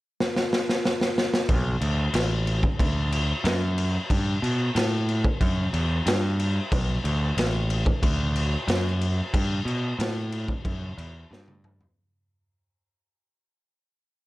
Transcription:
0.20 snare
0.36 snare
0.53 snare
0.69 snare
0.85 snare
1.01 snare
1.18 snare
1.34 snare
1.49 B1, kick, crash
1.81 D2, crash
2.14 A1, snare, crash
2.47 crash
2.63 kick
2.79 D2, kick, crash
3.12 crash
3.44 F#2, snare, crash
3.78 crash
4.10 G2, kick, crash
4.42 B2, crash
4.75 A2, snare, crash
5.09 crash
5.25 kick
5.41 F#2, kick, crash
5.73 E2, crash
6.06 G2, snare, crash
6.40 crash
6.72 B1, kick, crash
7.04 D2, crash
7.37 A1, snare, crash
7.70 crash
7.86 kick
8.03 D2, kick, crash
8.36 crash
8.67 F#2, snare, crash
9.01 crash
9.34 G2, kick, crash
9.65 B2, crash
9.99 A2, snare, crash
10.32 crash
10.48 kick
10.65 F#2, kick, crash
10.97 E2, crash
11.31 G2, snare
11.48 high tom
11.64 mid tom
11.81 floor tom

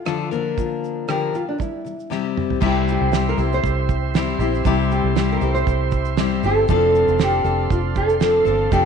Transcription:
Already playing: F4
0.05 D3 F3 D4 F4 A4, cross-stick, shaker
0.31 D3 F3 A#3 D4 A#4, shaker
0.58 F4, kick, shaker
0.84 shaker
1.08 D3 F3 A#3 D4 G4 A#4, cross-stick, shaker
1.34 D3 F3 F4, shaker
1.49 D4
1.58 C3 G3 E4, kick, shaker
1.85 C3 G3, shaker
2.00 shaker
2.10 C3 G3 C4 E4 G4, snare
2.37 mid tom
2.50 floor tom
2.60 C2 C3 G3 C4 E4 G4 C5 E5 C6, kick, crash
2.67 G4
2.88 shaker
2.92 G4
3.01 C2
3.11 G3 C4 E4 G4, snare, shaker
3.29 A#4
3.37 C2 C4 E4 G4, shaker
3.53 C5, shaker
3.63 C2, kick, shaker
3.89 kick, shaker
4.14 G3 C4 E4 G4, snare, shaker
4.39 A#1 C4 E4 G4, shaker
4.55 shaker
4.65 C2 C3 G3 C4 E4 G4, kick, shaker
4.91 G4, shaker
5.04 C2
5.16 G3 C4 E4 G4, snare, shaker
5.32 A#4
5.41 C2 C4 E4 G4, shaker
5.55 C5, shaker
5.67 C2, kick, shaker
5.91 kick, shaker
6.05 shaker
6.17 G3 C4 E4 G4, snare, shaker
6.43 G1 C4 E4 G4 A4, shaker
6.68 F1 F3 C4 D4 A4 D5 F5, kick, shaker
6.95 shaker
7.08 F1, shaker
7.19 F3 C4 D4 A4, snare, shaker
7.23 G4
7.44 F1 C4 D4 A4, shaker
7.70 F1 F4, kick, shaker
7.96 A4, kick, shaker
8.09 shaker
8.20 F3 C4 D4 A4, snare, shaker
8.45 G1 C4 D4 A4, shaker
8.72 F1 F3 C4 D4 G4 A4, kick, shaker

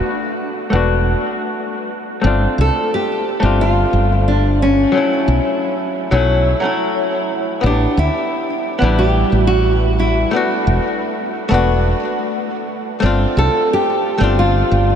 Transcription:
Already playing: A3 B3 D4 F#4
0.70 E1 A3 B3 D4
0.75 F#4
2.21 G1 A3 C4 D4
2.27 F4
2.58 C2 A4
2.94 G4
3.40 G1 A3 C4 D4
3.45 F4
3.61 F4
3.93 G1
4.28 D4
4.62 C#4
4.92 F#3 A3 C#4
4.97 E4
5.28 B1
6.11 B1 F#3 A3 C#4 E4
6.60 F#3 A3 C#4
6.65 E4
7.61 A1 B3 E4
7.66 D4 G4
7.97 D2 E4
8.79 A1 B3 D4 E4
8.84 G3
8.99 G4
9.32 A1
9.47 F#4
10.00 E4
10.31 A3 B3 D4
10.36 F#4
10.67 E1
11.49 E1 A3 B3 D4
11.54 F#4
13.00 G1 A3 C4 D4
13.06 F4
13.37 C2 A4
13.73 G4
14.18 G1 A3 C4 D4
14.24 F4
14.39 F4
14.71 G1

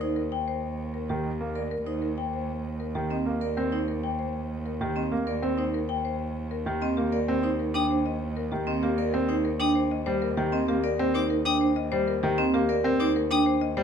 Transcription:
Already playing: D#2
0.01 D#4 C5
0.16 A#4
0.32 G5
0.48 C5
0.94 A#4
1.09 D#3 G4
1.41 A#3
1.55 A#4 D5
1.71 A#4
1.86 D#4 C5
2.02 A#4
2.18 G5
2.33 C5
2.80 A#4
2.95 D#3 G4
3.10 C4 D#5
3.26 A#3
3.41 A#4 D5
3.57 C4 A#4
3.72 D#4 C5
3.88 A#4
4.04 G5
4.19 C5
4.66 A#4
4.81 D#3 G4
4.96 C4 D#5
5.12 A#3
5.27 A#4 D5
5.42 C4 A#4
5.58 D#4 C5
5.74 A#4
5.89 G5
6.05 C5
6.51 A#4
6.66 D#3 G4
6.81 C4 D#5
6.97 A#3 G4
7.12 A#4 D5
7.28 C4 A#4
7.43 D#4 C5
7.60 A#4
7.74 D4 G5 D#6
7.90 C5
8.06 D#5
8.37 A#4
8.52 D#3 G4
8.67 C4 D#5
8.82 A#3 G4
8.98 A#4 D5
9.14 C4 A#4
9.29 D#4 C5
9.45 A#4
9.60 D4 G5 D#6
9.75 C5
9.91 D#5
10.06 G3 C5
10.22 A#4
10.37 D#3 G4
10.52 C4 D#5
10.68 A#3 G4
10.84 A#4 D5
10.99 C4 A#4
11.14 D#4 C5 D6
11.30 A#4
11.45 D4 G5 D#6
11.61 C5
11.76 D#5
11.92 G3 C5
12.08 A#4
12.23 D#3 G4
12.38 C4 D#5
12.54 A#3 G4
12.69 A#4 D5
12.84 C4 A#4
13.00 D#4 C5 D6
13.16 A#4
13.31 D4 G5 D#6
13.46 C5
13.61 D#5
13.77 G3 C5

